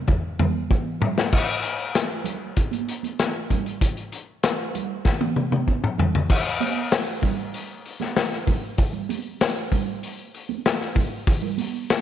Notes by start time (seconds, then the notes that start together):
0.08 kick, floor tom
0.39 floor tom, high conga, low conga
0.70 kick, high tom, high conga
1.01 mid tom, low conga
1.18 snare
1.33 kick, crash
1.64 closed hi-hat
1.95 snare, closed hi-hat
2.24 closed hi-hat, low conga
2.56 kick, closed hi-hat
2.71 closed hi-hat, high conga
2.88 closed hi-hat
3.03 closed hi-hat, high conga
3.19 snare, closed hi-hat
3.50 kick, closed hi-hat, low conga
3.66 closed hi-hat
3.81 kick, closed hi-hat
3.97 closed hi-hat
4.12 closed hi-hat
4.43 snare, closed hi-hat
4.75 closed hi-hat, low conga
5.05 kick, snare
5.21 high tom, high conga
5.36 mid tom
5.51 mid tom, high conga
5.68 kick
5.84 mid tom
5.98 floor tom, low conga
6.15 floor tom
6.30 kick, crash
6.60 open hi-hat, high conga
6.92 snare, open hi-hat
7.22 kick, open hi-hat, low conga
7.54 open hi-hat
7.85 open hi-hat
8.00 snare, high conga
8.16 snare, open hi-hat
8.32 snare
8.47 kick, open hi-hat, low conga
8.78 kick, open hi-hat
8.93 low conga
9.09 open hi-hat, high conga
9.41 snare, open hi-hat
9.71 kick, open hi-hat, low conga
10.03 open hi-hat
10.34 open hi-hat
10.49 high conga
10.66 snare, open hi-hat
10.81 snare
10.95 kick, open hi-hat, low conga
11.27 kick, open hi-hat
11.42 low conga
11.57 open hi-hat, high conga
11.90 snare, open hi-hat